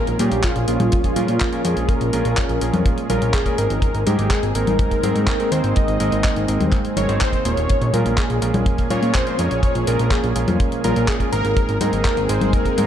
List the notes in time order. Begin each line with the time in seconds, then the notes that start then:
Already playing: A#2 F3 G#3 A#3 C#4 F4 G#4 A#4
0.07 A#1, closed hi-hat
0.19 A#2 C#4 F4 G4 G#4 A#4, closed hi-hat, high conga
0.32 A#1, closed hi-hat
0.44 F4, kick, clap, closed hi-hat
0.56 A#1, closed hi-hat
0.68 A#1 A#2 C#4 F4 G#4 A#4, closed hi-hat
0.80 A#1, closed hi-hat, high conga
0.92 kick, closed hi-hat
1.04 kick, closed hi-hat
1.16 A#2 C#4 F4 G#4 A#4, closed hi-hat, high conga
1.28 A#2, closed hi-hat
1.40 kick, clap, closed hi-hat
1.53 A#2 C#4 F4 G#4 A#4, closed hi-hat
1.65 F2 A#2 C#4 F4 G#4 A#4, closed hi-hat
1.77 A#1, closed hi-hat
1.89 A#4, kick, closed hi-hat
2.01 A#1, closed hi-hat
2.13 A#1 A#2 C#4 F4 G#4 A#4, closed hi-hat
2.25 A#1, closed hi-hat
2.37 kick, clap, closed hi-hat
2.49 A#1, closed hi-hat
2.61 A#1 A#2 C#4 F4 G#4 A#4, closed hi-hat
2.74 F2, closed hi-hat, high conga
2.86 kick, closed hi-hat
2.98 closed hi-hat
3.10 A#1 A#2 C#4 F4 G#4 A#4, closed hi-hat, high conga
3.22 A#1, closed hi-hat
3.34 G#4, kick, clap, closed hi-hat
3.46 A#2 C#4 F4 G#4 A#4, kick, closed hi-hat
3.58 G#1 G#2 C4 D#4 G#4 A#4, closed hi-hat
3.70 G#1, closed hi-hat
3.82 D#3 A#3 C4, kick, closed hi-hat
3.95 G#1, closed hi-hat
4.07 G#2 C4 D#4 G4 G#4 A#4, closed hi-hat, high conga
4.19 G#1, closed hi-hat
4.30 G#4, kick, clap, closed hi-hat
4.43 G#1, closed hi-hat
4.55 G#1 G#2 C4 D#4 G#4 A#4, closed hi-hat
4.67 G#1, closed hi-hat, high conga
4.79 kick, closed hi-hat
4.91 kick, closed hi-hat
5.03 G#2 C4 D#4 G#4 A#4, closed hi-hat, high conga
5.16 G#2, closed hi-hat
5.27 kick, clap, closed hi-hat
5.40 G#2 C4 D#4 G#4 A#4, closed hi-hat
5.52 D#2 G#2 C4 D#4 G#4 A#4 C5, closed hi-hat
5.64 G#1, closed hi-hat
5.76 D#5, kick, closed hi-hat
5.88 G#1, closed hi-hat
6.00 G#1 G#2 C4 D#4 G#4 A#4, closed hi-hat
6.12 G#1, closed hi-hat
6.24 kick, clap, closed hi-hat
6.36 G#1, closed hi-hat
6.48 G#1 G#2 C4 D#4 G#4 A#4, closed hi-hat
6.61 D#2, closed hi-hat, high conga
6.72 kick, clap, closed hi-hat
6.85 closed hi-hat
6.97 G#1 G#2 C4 D#4 G#4 A#4 C#5, closed hi-hat, high conga
7.09 G#1 G#2 C4 D#4 G#4 C5, closed hi-hat
7.21 C5, kick, clap, closed hi-hat
7.33 kick, closed hi-hat
7.45 D#1 A#2 C#4 F4 G#4 A#4 C#5, closed hi-hat
7.57 D#1, closed hi-hat
7.69 F3 A#3 C#4 G#4, kick, closed hi-hat
7.81 A#1, closed hi-hat
7.93 A#2 C#4 F4 G#4 A#4, closed hi-hat, high conga
8.06 A#1, closed hi-hat
8.18 G#4, kick, clap, closed hi-hat
8.30 A#1, closed hi-hat
8.42 A#1 A#2 C#4 F4 G#4 A#4, closed hi-hat
8.54 A#1, closed hi-hat, high conga
8.66 kick, closed hi-hat
8.78 kick, closed hi-hat
8.90 A#2 C#4 F4 G#4 A#4 C#5, closed hi-hat, high conga
9.03 A#2, closed hi-hat
9.15 C5, kick, clap, closed hi-hat
9.27 A#2 C#4 F4 G#4 A#4, closed hi-hat
9.39 F2 A#2 C#4 F4 G#4 A#4 C#5, closed hi-hat
9.51 A#1, closed hi-hat
9.63 kick, closed hi-hat
9.75 A#1, closed hi-hat
9.87 A#1 A#2 C#4 F4 G#4 A#4, closed hi-hat
9.99 A#1, closed hi-hat
10.11 G#4, kick, clap, closed hi-hat
10.24 A#1, closed hi-hat
10.36 A#1 A#2 C#4 F4 G#4 A#4, closed hi-hat
10.48 F2, closed hi-hat, high conga
10.60 kick, closed hi-hat
10.72 closed hi-hat
10.84 A#1 A#2 C#4 F4 G#4 A#4, closed hi-hat, high conga
10.96 A#1, closed hi-hat
11.08 G#4, kick, clap, closed hi-hat
11.20 A#2 C#4 F4 G#4 A#4, kick, closed hi-hat
11.32 G#1 G#2 C4 D#4 G#4 A#4, closed hi-hat
11.45 G#1, closed hi-hat
11.57 D#3 G#3 A#3 C4 G#4, kick, closed hi-hat
11.69 G#1, closed hi-hat
11.81 G#2 C4 D#4 G#4 A#4, closed hi-hat, high conga
11.93 G#1, closed hi-hat
12.05 kick, clap, closed hi-hat
12.17 G#1, closed hi-hat
12.29 G#1 G#2 C4 D#4 G#4 A#4 C5, closed hi-hat
12.41 G#1, closed hi-hat, high conga
12.53 A#4, kick, closed hi-hat
12.65 kick, closed hi-hat
12.78 G#2 C4 D#4 G#4 A#4, closed hi-hat, high conga